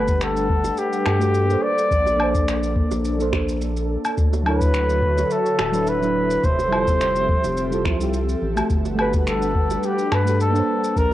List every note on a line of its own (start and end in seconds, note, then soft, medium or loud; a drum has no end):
0.00 0.71 G1 medium
0.00 1.61 G3 medium
0.00 1.16 A3 medium
0.00 1.61 D4 medium
0.00 1.18 G4 medium
0.00 1.61 A4 medium
0.00 0.25 B4 medium
0.00 1.20 B4 loud
0.00 1.61 B4 medium
0.00 1.17 F#5 medium
0.00 1.61 F#5 medium
0.08 kick loud
0.08 shaker medium
0.21 0.80 A4 medium
0.21 finger snap medium
0.21 shaker soft
0.37 shaker soft
0.49 kick medium
0.64 high bongo medium
0.64 shaker medium
0.78 1.65 G4 loud
0.78 shaker soft
0.93 shaker soft
1.06 1.56 G2 medium
1.06 finger snap medium
1.06 high bongo medium
1.06 low woodblock medium
1.19 1.45 A3 medium
1.19 1.46 F#4 medium
1.19 1.46 G4 medium
1.19 1.47 A4 medium
1.19 shaker medium
1.35 shaker soft
1.46 2.14 A#3 medium
1.46 2.16 D4 medium
1.51 2.17 A4 medium
1.51 2.18 C5 medium
1.51 shaker soft
1.63 4.15 A#3 medium
1.63 4.15 D4 medium
1.63 6.41 A4 medium
1.63 2.76 D5 loud
1.79 shaker medium
1.91 2.84 A#1 loud
1.91 kick loud
1.91 shaker medium
2.06 high bongo medium
2.06 shaker soft
2.16 3.14 A#3 medium
2.16 3.15 D4 medium
2.16 low woodblock medium
2.21 3.17 A4 medium
2.21 3.18 C5 loud
2.35 kick loud
2.35 shaker medium
2.48 finger snap medium
2.48 shaker medium
2.63 shaker soft
2.76 kick loud
2.91 3.97 A#1 medium
2.91 high bongo medium
2.91 shaker medium
3.05 shaker medium
3.19 3.29 A#3 medium
3.19 3.30 D4 medium
3.19 3.30 A4 medium
3.19 3.31 C5 medium
3.19 shaker soft
3.32 3.57 A#3 medium
3.32 3.57 D4 medium
3.32 3.58 A4 medium
3.32 3.59 C5 medium
3.32 finger snap medium
3.32 kick medium
3.32 high bongo medium
3.49 shaker medium
3.62 shaker medium
3.77 shaker soft
4.05 low woodblock medium
4.05 shaker medium
4.18 5.24 D2 medium
4.18 6.42 D3 medium
4.18 6.42 F#4 medium
4.18 6.42 C#5 medium
4.18 8.67 E5 medium
4.18 kick loud
4.18 shaker medium
4.33 high bongo medium
4.33 shaker soft
4.43 5.70 F#3 medium
4.43 5.71 D4 medium
4.43 low woodblock medium
4.48 5.72 E4 medium
4.48 5.34 B4 medium
4.48 5.73 C#5 loud
4.61 kick loud
4.61 shaker medium
4.74 finger snap medium
4.74 shaker medium
4.90 shaker soft
5.02 kick loud
5.18 high bongo medium
5.18 shaker medium
5.31 5.90 A4 loud
5.31 shaker medium
5.46 shaker soft
5.59 6.37 D1 medium
5.59 finger snap medium
5.59 high bongo medium
5.59 low woodblock medium
5.72 5.98 F#3 medium
5.72 5.99 D4 medium
5.72 5.99 E4 medium
5.72 6.00 B4 medium
5.72 shaker medium
5.87 6.46 B4 loud
5.87 shaker medium
6.02 6.42 F#3 medium
6.02 6.42 D4 medium
6.02 6.43 E4 medium
6.02 6.44 B4 loud
6.02 shaker soft
6.31 shaker medium
6.44 7.36 F1 loud
6.44 8.68 F3 medium
6.44 8.68 C4 medium
6.44 8.68 G4 medium
6.44 10.65 A4 medium
6.44 8.14 C5 loud
6.44 kick loud
6.44 shaker medium
6.59 high bongo medium
6.59 shaker soft
6.68 7.67 G3 medium
6.68 7.68 E4 medium
6.72 7.69 F4 medium
6.72 7.70 A4 loud
6.72 low woodblock medium
6.87 kick loud
6.87 shaker medium
7.01 finger snap medium
7.01 shaker medium
7.16 shaker soft
7.29 kick loud
7.44 7.86 F1 loud
7.44 high bongo medium
7.44 shaker medium
7.57 shaker medium
7.70 7.81 G3 medium
7.70 7.82 E4 medium
7.70 7.83 F4 medium
7.70 7.83 A4 medium
7.70 shaker soft
7.83 8.35 C2 medium
7.83 7.98 G3 medium
7.83 7.99 F4 medium
7.83 7.99 A4 medium
7.83 finger snap medium
7.83 kick loud
7.83 high bongo medium
7.99 8.14 G3 medium
7.99 8.15 E4 medium
7.99 8.15 F4 medium
7.99 8.16 G4 medium
7.99 shaker medium
8.14 shaker medium
8.29 shaker soft
8.42 8.62 A1 medium
8.56 8.94 A3 medium
8.56 8.95 F#4 medium
8.56 8.96 G4 medium
8.56 8.97 A4 medium
8.56 low woodblock medium
8.56 shaker medium
8.70 9.77 G1 medium
8.70 10.66 G3 medium
8.70 11.14 D4 medium
8.70 10.66 B4 medium
8.70 10.66 F#5 medium
8.70 kick loud
8.70 shaker medium
8.85 high bongo medium
8.85 shaker soft
8.95 10.22 A3 medium
8.95 10.23 F#4 medium
8.95 low woodblock medium
9.00 10.24 G4 medium
9.00 9.13 B4 medium
9.00 10.25 B4 loud
9.13 kick loud
9.13 shaker medium
9.27 9.87 A4 medium
9.27 finger snap medium
9.27 shaker medium
9.42 shaker soft
9.55 kick loud
9.70 high bongo medium
9.70 shaker medium
9.83 10.15 G4 medium
9.83 shaker soft
9.99 shaker soft
10.12 10.62 G2 medium
10.12 10.40 B4 medium
10.12 finger snap medium
10.12 high bongo medium
10.12 low woodblock medium
10.25 10.51 A3 medium
10.25 10.52 F#4 medium
10.25 10.52 G4 medium
10.25 10.53 A4 medium
10.25 shaker medium
10.41 10.99 A4 medium
10.41 shaker medium
10.51 11.14 A#3 medium
10.51 11.14 D4 medium
10.56 11.14 A4 medium
10.56 11.14 C5 medium
10.56 shaker soft
10.68 11.14 A#3 medium
10.68 11.14 A5 medium
10.84 shaker medium
10.96 11.14 A#1 loud
10.96 11.14 A#4 loud
10.96 kick loud
10.96 shaker medium